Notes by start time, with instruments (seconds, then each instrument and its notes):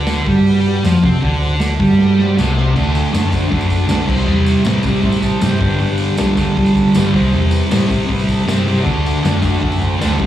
Already playing: fingered electric bass D2, distorted electric guitar D3
0.07 transistor combo organ D4 F#4 B4, snare, tambourine
0.24 fingered electric bass G2, distorted electric guitar G3, transistor combo organ D4 F#4 A4, kick, open hi-hat
0.45 transistor combo organ D4 F#4 B4, open hi-hat
0.65 transistor combo organ D4 F#4 B4, open hi-hat
0.84 fingered electric bass F2, distorted electric guitar F3, transistor combo organ D4 F#4 C5, snare, open hi-hat, tambourine
1.02 fingered electric bass C3, distorted electric guitar C4, transistor combo organ D4 F#4 A4, kick, open hi-hat
1.22 fingered electric bass D2, distorted electric guitar D3, transistor combo organ D4 F#4 A4, kick, open hi-hat
1.39 transistor combo organ D4 F#4 C5, open hi-hat
1.59 transistor combo organ D4 F#4 A4, snare, open hi-hat, tambourine
1.79 fingered electric bass G2, distorted electric guitar G3, transistor combo organ D4 F#4 A4, kick, open hi-hat
1.99 transistor combo organ D4 F#4 A4, snare
2.19 transistor combo organ D4 F#4 C5, snare
2.36 fingered electric bass C2, distorted electric guitar C3, transistor combo organ D4 F#4 A4, snare, tambourine
2.57 transistor combo organ D4 F#4 C5, snare
2.75 fingered electric bass D2, distorted electric guitar D3 A3 D4, transistor combo organ D4 F#4 A4, kick, crash, tambourine
2.95 transistor combo organ D4 F#4 A4, open hi-hat, tambourine
3.05 tambourine
3.12 fingered electric bass F#2, distorted electric guitar D3 A3 D4, transistor combo organ D4, snare, open hi-hat, tambourine
3.17 transistor combo organ F#4 A4
3.24 tambourine
3.32 distorted electric guitar D3 A3 D4, transistor combo organ D4 F#4 C5, kick, open hi-hat, tambourine
3.42 tambourine
3.50 fingered electric bass F#2, distorted electric guitar D3 A3 D4, transistor combo organ D4 F#4 A4, kick, open hi-hat
3.61 tambourine
3.69 transistor combo organ D4 F#4 A4, kick, open hi-hat, tambourine
3.87 fingered electric bass B1, distorted electric guitar D3 A3 D4, transistor combo organ D4 F#4 A4, snare, open hi-hat, tambourine
4.00 snare
4.06 fingered electric bass C2, distorted electric guitar C3 G3 C4, transistor combo organ E4 G4 C5, kick, crash
4.18 tambourine
4.26 fingered electric bass E2, distorted electric guitar C3 G3 C4, tambourine
4.46 transistor combo organ E4 G4 C5, open hi-hat, tambourine
4.62 fingered electric bass A2, distorted electric guitar C3 G3 C4, transistor combo organ E4 G4 B4, tambourine
4.66 snare, open hi-hat
4.75 tambourine
4.83 distorted electric guitar C3 G3 C4, transistor combo organ E4 G4 D5, kick, open hi-hat, tambourine
4.93 tambourine
5.02 fingered electric bass A2, distorted electric guitar C3 G3 C4, transistor combo organ E4 G4 C5, kick, open hi-hat
5.12 tambourine
5.22 transistor combo organ E4 G4 C5 A5, kick, open hi-hat, tambourine
5.41 fingered electric bass G2, distorted electric guitar C3 G3 C4, transistor combo organ E4 G4 C5 G5, snare, open hi-hat, tambourine
5.59 fingered electric bass G1, distorted electric guitar G2 D3 G3, transistor combo organ D4 G4 B4, kick, open hi-hat
5.70 tambourine
5.80 fingered electric bass G1, distorted electric guitar G2 D3 G3, open hi-hat, tambourine
5.98 transistor combo organ D4 G4 A4, open hi-hat, tambourine
6.08 tambourine
6.16 fingered electric bass B1, distorted electric guitar G2 D3 G3, transistor combo organ D4 G4 A4, snare, open hi-hat, tambourine
6.28 tambourine
6.37 distorted electric guitar G2 D3 G3, transistor combo organ D4 G4, kick, open hi-hat, tambourine
6.41 transistor combo organ A4
6.48 tambourine
6.56 fingered electric bass B1, distorted electric guitar G2 D3 G3, transistor combo organ D4 G4 A4, kick, open hi-hat
6.66 tambourine
6.74 transistor combo organ D4 G4 A4, kick, open hi-hat, tambourine
6.94 fingered electric bass G1, distorted electric guitar G2 D3 G3, transistor combo organ D4 G4 B4, snare, tambourine
7.14 fingered electric bass C2, distorted electric guitar C3 G3 C4, transistor combo organ E4 G4 C5, kick, open hi-hat
7.23 tambourine
7.33 fingered electric bass E2, distorted electric guitar C3 G3 C4, open hi-hat, tambourine
7.50 transistor combo organ E4 G4 B4, open hi-hat, tambourine
7.61 tambourine
7.70 fingered electric bass A2, distorted electric guitar C3 G3 C4, transistor combo organ E4 G4 C5, snare, open hi-hat, tambourine
7.81 tambourine
7.88 distorted electric guitar C3 G3 C4, transistor combo organ E4 G4 C5, kick, open hi-hat, tambourine
8.01 tambourine
8.07 fingered electric bass A2, distorted electric guitar C3 G3 C4, transistor combo organ E4, kick, open hi-hat, tambourine
8.12 transistor combo organ G4 B4
8.19 tambourine
8.28 transistor combo organ E4 G4 A4, kick, open hi-hat, tambourine
8.40 tambourine
8.46 fingered electric bass G2, distorted electric guitar C3 G3 C4, transistor combo organ E4, snare, open hi-hat, tambourine
8.50 transistor combo organ G4 C5
8.58 tambourine
8.65 distorted electric guitar C3 G3 C4, transistor combo organ E4 G4 C5, open hi-hat
8.77 transistor combo organ F#4, tambourine
8.82 fingered electric bass D2, distorted electric guitar D3 A3, transistor combo organ A4 D5, kick, tambourine
8.87 distorted electric guitar D4, crash
9.05 transistor combo organ F#4 A4 D5, open hi-hat, tambourine
9.15 tambourine
9.23 fingered electric bass F#2, distorted electric guitar D3 A3 D4, transistor combo organ F#4 A4 D5, snare, open hi-hat, tambourine
9.34 tambourine
9.42 distorted electric guitar D3 A3 D4, transistor combo organ F#4 A4 D5, kick, open hi-hat, tambourine
9.54 tambourine
9.61 fingered electric bass F#2, distorted electric guitar D3 A3 D4, transistor combo organ F#4 A4 E5, kick, open hi-hat
9.72 tambourine
9.80 transistor combo organ F#4 A4 C5, kick, open hi-hat, tambourine
9.99 fingered electric bass D2, distorted electric guitar D3 A3 D4, snare, open hi-hat, tambourine
10.04 transistor combo organ F#4 A4 C5
10.11 snare
10.19 fingered electric bass C2, distorted electric guitar C3 G3 C4, transistor combo organ E4 G4 C5, kick, open hi-hat